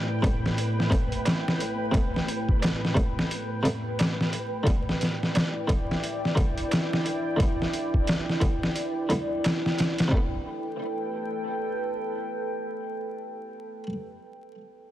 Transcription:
0.00 4.62 A2 medium
0.00 0.18 C3 medium
0.00 0.19 G3 medium
0.00 0.20 A3 medium
0.00 0.22 B3 medium
0.00 4.62 B4 medium
0.00 10.14 B4 medium
0.00 4.63 G5 medium
0.22 0.88 C3 medium
0.22 0.88 G3 medium
0.22 0.89 A3 medium
0.22 0.89 B3 medium
0.22 kick medium
0.22 closed hi-hat medium
0.46 snare soft
0.58 closed hi-hat medium
0.80 snare soft
0.90 1.01 C3 medium
0.90 1.02 G3 medium
0.90 1.02 A3 medium
0.90 1.03 B3 medium
0.90 kick loud
0.90 closed hi-hat medium
1.12 closed hi-hat soft
1.25 snare loud
1.25 closed hi-hat medium
1.25 darbuka tek medium
1.48 snare soft
1.60 closed hi-hat medium
1.91 2.92 C3 medium
1.91 2.92 G3 medium
1.91 2.93 A3 medium
1.91 kick loud
1.91 closed hi-hat medium
1.97 2.95 B3 medium
2.16 snare soft
2.28 closed hi-hat medium
2.49 kick medium
2.62 snare loud
2.62 closed hi-hat medium
2.62 darbuka tek medium
2.85 snare soft
2.95 3.60 C3 medium
2.95 3.61 G3 medium
2.95 3.61 A3 medium
2.95 3.62 B3 medium
2.95 kick medium
2.95 closed hi-hat medium
3.19 snare medium
3.31 closed hi-hat medium
3.63 3.74 C3 medium
3.63 3.74 G3 medium
3.63 3.75 A3 medium
3.63 3.75 B3 medium
3.63 closed hi-hat medium
3.99 snare loud
3.99 closed hi-hat medium
3.99 darbuka tek medium
4.21 snare soft
4.33 closed hi-hat medium
4.63 5.64 D3 medium
4.63 5.65 E3 medium
4.63 10.08 E4 medium
4.63 10.08 G5 medium
4.63 kick loud
4.63 closed hi-hat medium
4.67 5.66 G3 medium
4.67 5.67 B3 medium
4.67 10.08 D5 medium
4.89 snare soft
5.01 snare soft
5.01 closed hi-hat medium
5.23 snare soft
5.35 snare loud
5.35 closed hi-hat medium
5.35 darbuka tek medium
5.67 6.33 D3 medium
5.67 6.34 E3 medium
5.67 6.34 G3 medium
5.67 6.35 B3 medium
5.67 kick medium
5.67 closed hi-hat medium
5.91 snare soft
6.04 closed hi-hat medium
6.25 snare soft
6.35 6.46 D3 medium
6.35 6.47 E3 medium
6.35 6.47 G3 medium
6.35 6.48 B3 loud
6.35 kick medium
6.35 closed hi-hat medium
6.58 closed hi-hat soft
6.71 snare medium
6.71 closed hi-hat medium
6.71 darbuka tek medium
6.93 snare soft
7.06 closed hi-hat medium
7.36 8.37 D3 medium
7.36 8.38 E3 medium
7.36 8.39 G3 medium
7.36 kick loud
7.36 closed hi-hat medium
7.42 8.40 B3 medium
7.62 snare soft
7.73 closed hi-hat medium
7.94 kick medium
8.07 snare loud
8.07 closed hi-hat medium
8.07 darbuka tek medium
8.29 snare soft
8.40 9.06 D3 medium
8.40 9.06 E3 medium
8.40 9.07 G3 medium
8.40 9.07 B3 medium
8.40 kick medium
8.40 closed hi-hat medium
8.63 snare soft
8.76 closed hi-hat medium
9.09 9.20 D3 medium
9.09 9.20 E3 medium
9.09 9.21 G3 medium
9.09 9.21 B3 medium
9.09 closed hi-hat medium
9.44 snare loud
9.44 closed hi-hat medium
9.44 darbuka tek medium
9.66 snare soft
9.79 snare medium
9.79 closed hi-hat medium
9.98 snare medium
9.98 closed hi-hat medium
10.08 13.83 C3 medium
10.08 13.86 G3 medium
10.08 13.60 A4 medium
10.08 13.61 B4 medium
10.08 13.61 G5 medium
10.12 13.89 A3 medium
10.12 kick medium
10.17 13.92 B3 medium

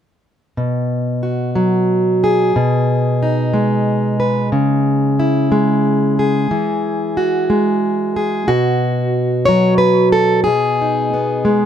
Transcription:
0.57 2.51 B2 medium
1.23 2.51 F#4 soft
1.55 2.55 F#3 medium
2.24 4.19 G#4 soft
2.56 4.50 B2 medium
3.23 5.19 D#4 medium
3.54 5.51 G#3 medium
4.20 4.49 B4 soft
4.52 6.51 C#3 medium
5.19 6.47 E4 soft
5.52 6.47 G#3 medium
6.19 8.15 G#4 soft
6.51 8.45 E3 medium
7.17 8.45 F#4 soft
7.50 8.45 G#3 medium
8.16 8.49 G#4 soft
8.48 10.43 B2 medium
8.48 10.13 F#4 medium
9.46 10.47 F#3 medium
9.46 9.78 C#5 medium
9.78 10.12 B4 medium
10.12 10.43 A4 medium
10.44 11.66 B2 medium
10.44 11.66 G#4 medium
10.82 11.66 D#4 soft
11.14 11.66 B3 soft
11.45 11.66 G#3 medium

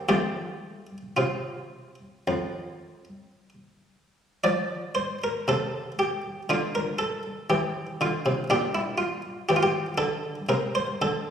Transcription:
0.09 0.86 F3 soft
0.09 0.97 A3 soft
0.09 0.97 C4 soft
0.09 1.19 G4 medium
1.17 1.95 C3 soft
1.17 3.49 F4 medium
2.27 3.04 F2 soft
4.44 5.18 F3 soft
4.44 4.96 D5 medium
4.95 5.21 C5 medium
5.24 5.48 A#4 medium
5.48 6.21 C3 soft
5.48 5.91 A4 medium
5.99 6.42 G4 medium
6.49 7.22 D3 soft
6.49 8.47 D4 soft
6.49 6.75 F4 medium
6.75 7.00 A#4 medium
6.99 7.50 A4 medium
7.50 7.86 E3 soft
7.50 8.00 G4 medium
8.01 8.24 D3 soft
8.01 8.43 F4 medium
8.26 8.49 C3 soft
8.50 9.22 A#2 soft
8.50 10.46 D4 soft
8.50 8.75 G4 medium
8.75 9.00 E4 medium
8.98 9.48 F4 medium
9.49 9.86 E3 soft
9.49 9.56 G4 medium
9.56 9.63 F4 medium
9.63 9.94 G4 medium
9.98 10.35 D3 soft
9.98 10.49 A4 medium
10.49 10.86 C3 soft
10.49 10.75 A#4 medium
10.75 11.00 C5 medium
11.02 11.30 D3 soft
11.02 11.30 A4 medium

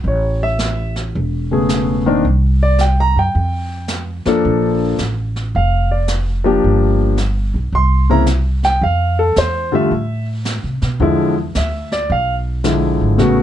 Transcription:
0.04 1.11 A1 medium
0.04 0.42 C#5 medium
0.04 brush sweep soft
0.43 0.94 E5 medium
0.59 snare medium
0.59 hi-hat pedal medium
0.96 snare soft
1.14 2.21 E1 medium
1.14 brush sweep medium
1.51 2.03 C#3 soft
1.51 2.03 A3 soft
1.51 2.03 B3 soft
1.51 2.04 G#4 medium
1.69 snare medium
1.69 hi-hat pedal medium
2.06 2.23 D#3 medium
2.06 2.23 A#3 medium
2.06 2.24 C4 medium
2.06 2.24 D4 medium
2.24 3.13 C2 medium
2.24 brush sweep soft
2.63 2.80 D5 medium
2.78 2.98 G5 medium
2.78 snare soft
2.78 hi-hat pedal soft
3.00 3.17 A#5 medium
3.16 3.33 F#2 medium
3.16 3.99 G5 medium
3.34 4.22 F2 medium
3.34 brush sweep soft
3.88 snare medium
3.88 hi-hat pedal medium
4.25 4.43 F2 medium
4.25 4.96 F3 medium
4.25 4.96 A#3 medium
4.25 4.97 D4 medium
4.25 4.97 A4 medium
4.25 snare soft
4.44 4.96 A#1 medium
4.44 brush sweep soft
4.98 5.50 A1 medium
4.98 snare medium
4.98 hi-hat pedal medium
5.36 snare soft
5.54 6.60 F1 medium
5.54 5.91 F5 medium
5.54 brush sweep soft
5.91 6.09 D5 medium
6.08 snare medium
6.08 hi-hat pedal medium
6.44 7.14 F3 medium
6.44 7.15 A#3 medium
6.44 7.15 D4 medium
6.44 7.15 G4 medium
6.64 7.51 G1 medium
6.64 brush sweep soft
7.17 snare medium
7.17 hi-hat pedal medium
7.54 7.71 B1 medium
7.72 8.78 C2 medium
7.72 8.10 C6 medium
7.72 brush sweep soft
8.09 8.26 C#3 medium
8.09 8.26 A#3 medium
8.09 8.27 C4 medium
8.09 8.27 E4 medium
8.09 8.21 A#5 medium
8.26 snare medium
8.26 hi-hat pedal medium
8.63 8.82 G5 loud
8.63 snare soft
8.81 9.33 F2 medium
8.81 9.18 F5 medium
8.81 brush sweep soft
9.19 9.37 A4 medium
9.36 9.88 E2 medium
9.36 9.73 C5 medium
9.36 snare medium
9.36 hi-hat pedal soft
9.72 9.89 D3 medium
9.72 9.90 G3 medium
9.72 9.90 A3 medium
9.72 9.90 F4 medium
9.72 10.25 E5 medium
9.91 10.60 A2 medium
9.91 brush sweep medium
10.45 snare medium
10.45 hi-hat pedal medium
10.63 10.81 C3 medium
10.82 10.99 B2 medium
10.82 snare soft
11.00 11.51 E2 medium
11.00 11.33 D3 medium
11.00 11.34 F3 medium
11.00 11.34 G#3 medium
11.00 11.34 E4 medium
11.00 brush sweep soft
11.55 12.06 D2 medium
11.55 11.92 E5 medium
11.55 snare soft
11.55 hi-hat pedal medium
11.92 12.10 D5 medium
11.92 snare soft
12.10 12.97 B1 medium
12.10 12.33 F5 medium
12.10 brush sweep soft
12.64 13.19 D3 medium
12.64 13.19 F3 soft
12.64 13.19 G#3 soft
12.64 13.20 E4 medium
12.64 snare medium
12.64 hi-hat pedal medium
13.01 13.18 G#1 medium
13.18 13.43 A1 medium
13.18 13.43 C#3 medium
13.18 13.43 A3 medium
13.18 13.43 B3 medium
13.18 13.43 F#4 medium
13.18 brush sweep soft
13.18 snare soft

